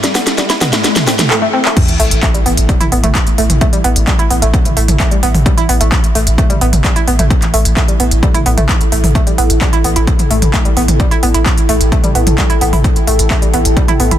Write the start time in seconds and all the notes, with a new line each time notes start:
Already playing: E4 A4 E5, riser
0.04 G3, snare, closed hi-hat
0.15 B3, snare, open hi-hat
0.27 snare, closed hi-hat
0.38 G3, snare, closed hi-hat
0.50 E4, snare, closed hi-hat
0.61 B3, snare, mid tom, open hi-hat
0.73 A3, snare, closed hi-hat
0.84 snare, closed hi-hat, swell
0.96 snare, closed hi-hat, mid tom
1.07 C4, snare, open hi-hat
1.19 snare, closed hi-hat, mid tom
1.30 A4, clap
1.42 A3
1.53 C4
1.65 clap
1.76 E4, kick, closed hi-hat, crash, sub drop
1.83 A4
1.88 A1, closed hi-hat
1.98 A1 A3 E5, open hi-hat
2.11 A1, closed hi-hat
2.23 A3, kick, clap, closed hi-hat
2.34 A1 G3, closed hi-hat
2.46 A1 B3, open hi-hat
2.57 A1, closed hi-hat
2.69 G3, kick, closed hi-hat
2.80 A1 E4, closed hi-hat, mid tom
2.92 A1 B3, open hi-hat
3.04 A1 A3, closed hi-hat, mid tom
3.15 kick, clap, closed hi-hat
3.27 A1, closed hi-hat
3.38 A1 A3, open hi-hat
3.50 A1, closed hi-hat, mid tom
3.61 A3, kick, closed hi-hat
3.73 A1 G3, closed hi-hat
3.84 A1 B3, open hi-hat
3.96 A1, closed hi-hat
4.07 G3, kick, clap, closed hi-hat
4.19 A1 E4, closed hi-hat
4.30 A1 B3, open hi-hat
4.42 A1 A3, closed hi-hat
4.54 kick, closed hi-hat
4.65 A1, closed hi-hat, mid tom
4.77 A1 A3, open hi-hat
4.88 A1, closed hi-hat, mid tom
5.00 A3, kick, clap, closed hi-hat
5.11 A1 G3, closed hi-hat
5.23 A1 B3, open hi-hat
5.34 A1, mid tom, open hi-hat
5.46 G3, kick, closed hi-hat
5.57 A1 E4, closed hi-hat
5.69 A1 B3, open hi-hat
5.80 A1 A3, closed hi-hat
5.92 kick, clap, closed hi-hat
6.04 A1, closed hi-hat
6.15 A1 A3, open hi-hat
6.27 A1, closed hi-hat
6.38 A3, kick, closed hi-hat
6.50 A1 G3, closed hi-hat, mid tom
6.61 A1 B3, open hi-hat
6.73 A1, closed hi-hat, mid tom
6.84 G3, kick, clap, closed hi-hat
6.96 A1 E4, closed hi-hat
7.07 A1 B3, open hi-hat
7.19 A1 A3, closed hi-hat, mid tom
7.30 kick, closed hi-hat
7.42 A1, clap, closed hi-hat
7.54 A1 A3, open hi-hat
7.65 A1, closed hi-hat
7.77 A3, kick, clap, closed hi-hat
7.88 A1 G3, closed hi-hat
8.00 A1 B3, open hi-hat
8.11 A1, closed hi-hat
8.23 G3, kick, closed hi-hat
8.34 A1 E4, closed hi-hat, mid tom
8.46 A1 B3, open hi-hat
8.57 A1 A3, closed hi-hat, mid tom
8.69 kick, clap, closed hi-hat
8.81 A1, closed hi-hat
8.92 A1 A3, open hi-hat
9.04 A1, mid tom, open hi-hat
9.15 A3, kick, closed hi-hat
9.27 A1 G3, closed hi-hat
9.36 A1 B3 G5, open hi-hat
9.50 A1, closed hi-hat
9.61 G3, kick, clap, closed hi-hat
9.73 A1 E4, closed hi-hat
9.84 A1 B3, open hi-hat
9.96 A1 E4, closed hi-hat
10.07 kick, closed hi-hat
10.19 A1, closed hi-hat, mid tom
10.30 A1 A3, open hi-hat
10.42 A1, closed hi-hat, mid tom
10.54 A3, kick, clap, closed hi-hat
10.65 A1 G3, closed hi-hat
10.77 A1 B3, open hi-hat
10.88 A1, closed hi-hat, mid tom
11.00 G3, kick, closed hi-hat
11.11 A1 E4, closed hi-hat
11.23 A1 B3, open hi-hat
11.34 A1 E4, closed hi-hat
11.46 kick, clap, closed hi-hat
11.57 A1, closed hi-hat
11.69 A1 A3, open hi-hat
11.80 A1, closed hi-hat
11.92 A3, kick, closed hi-hat
12.04 A1 G3, closed hi-hat, mid tom
12.15 A1 B3, open hi-hat
12.27 A1, closed hi-hat, mid tom
12.38 G3, kick, clap, closed hi-hat
12.50 A1 E4, closed hi-hat
12.61 A1 B3, open hi-hat
12.73 A1 E4, mid tom, open hi-hat
12.84 kick, closed hi-hat
12.96 A1, closed hi-hat
13.07 A1 A3, open hi-hat
13.19 A1, closed hi-hat
13.30 A3, kick, clap, closed hi-hat
13.42 A1 G3, closed hi-hat
13.54 A1 B3, open hi-hat
13.65 A1, closed hi-hat
13.77 G3, kick, closed hi-hat
13.88 A1 E4, closed hi-hat, mid tom
14.00 A1 B3, open hi-hat
14.11 A1 E4, closed hi-hat, mid tom